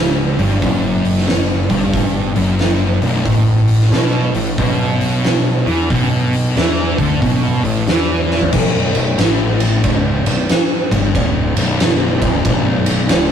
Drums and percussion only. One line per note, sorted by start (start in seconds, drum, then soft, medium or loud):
0.39 open hi-hat medium
0.62 kick loud
0.62 open hi-hat medium
1.05 open hi-hat medium
1.18 snare soft
1.27 snare loud
1.27 open hi-hat medium
1.70 kick medium
1.70 open hi-hat medium
1.93 kick loud
1.93 open hi-hat medium
2.36 open hi-hat medium
2.59 snare loud
2.59 open hi-hat medium
3.02 open hi-hat soft
3.25 kick loud
3.25 open hi-hat medium
3.68 open hi-hat medium
3.81 snare soft
3.92 snare loud
3.92 open hi-hat medium
4.34 open hi-hat medium
4.58 kick loud
4.58 open hi-hat medium
5.01 open hi-hat medium
5.24 snare loud
5.24 open hi-hat medium
5.67 open hi-hat soft
5.90 kick loud
5.90 open hi-hat medium
6.33 open hi-hat medium
6.57 snare loud
6.57 open hi-hat medium
6.98 kick medium
6.98 open hi-hat medium
7.22 kick loud
7.22 open hi-hat medium
7.65 open hi-hat medium
7.87 snare loud
7.87 open hi-hat medium
8.31 snare medium
8.41 floor tom medium
8.53 kick loud
8.53 crash loud
8.95 ride medium
9.19 snare loud
9.19 ride loud
9.60 ride medium
9.84 kick loud
9.84 ride loud
10.26 ride medium
10.49 snare loud
10.49 ride medium
10.91 kick medium
10.91 ride medium
11.15 kick loud
11.15 ride loud
11.57 ride medium
11.80 snare loud
11.80 ride loud
12.22 kick loud
12.22 ride medium
12.45 kick loud
12.45 ride loud
12.86 ride medium
13.09 snare loud
13.09 ride loud